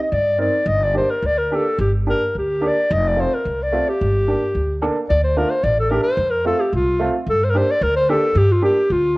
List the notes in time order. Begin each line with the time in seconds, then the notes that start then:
0.02 D#5
0.12 G2 D5
0.38 C4 D#4 A#4 D5
0.66 G1 D#5
0.83 D5
0.94 A#3 D4 G4 C5
1.10 A#4
1.22 D2 D5
1.38 A#4
1.51 A#3 D4 G4
1.55 A4
1.79 G1 G4
2.07 A#3 D4 G4 A#4
2.35 D2 G4
2.61 A#3 D4 G4
2.68 D5
2.91 F1 D#5
3.08 D5
3.16 A3 C4 F4
3.20 C5
3.34 A#4
3.45 C2
3.63 D5
3.72 A3 C4 F4
3.89 G4
4.01 G1
4.27 A#3 D4 G4
4.55 D2
4.81 A#3 D4 A4
5.09 D2 D5
5.24 C5
5.36 A3 D4 F4 A#4
5.50 C5
5.63 A1 D5
5.80 A4
5.90 A3 D4 G4 A#4
6.03 C5
6.17 F2
6.31 A#4
6.45 A3 C4 F4 A4
6.60 G4
6.73 C2 F4
6.99 A3 C4 F4
7.27 G2 A4
7.44 C5
7.50 A#3 A#4
7.54 D4 G4 C5
7.71 D5
7.81 D2 A#4
7.96 C5
8.09 A#3 D4 G4 A4
8.35 G2 G4
8.52 F4
8.62 A#3 D4 G4
8.90 D2 F4